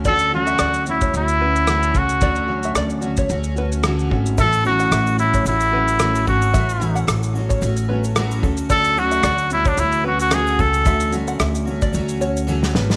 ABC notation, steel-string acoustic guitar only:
X:1
M:4/4
L:1/8
Q:"Swing 16ths" 1/4=111
K:Dlyd
V:1 name="Steel-string acoustic guitar"
[D,F,A,CF] [D,F,A,CF]2 [A,CF] [F,A,CF] [A,CF] [D,F,A,CF] [A,CF] | [D,F,A,CF] [D,F,A,CF]2 [A,CF] [F,A,CF] [A,CF] [D,F,A,CF] [A,CF] | [A,,E,F,A,CF] [A,,E,F,A,CF]2 [F,A,CF] [F,A,CF] [F,A,CF] [A,,E,F,A,CF] [F,A,CF] | [A,,E,F,A,CF] [A,,E,F,A,CF]2 [F,A,CF] [F,A,CF] [F,A,CF] [A,,E,F,A,CF] [A,CF] |
[D,F,A,CF] [D,F,A,CF]2 [A,CF] [F,A,CF] [A,CF] [D,F,A,CF] [A,CF] | [D,F,A,CF] [D,F,A,CF]2 [A,CF] [F,A,CF] [A,CF] [D,F,A,CF] [A,CF] |]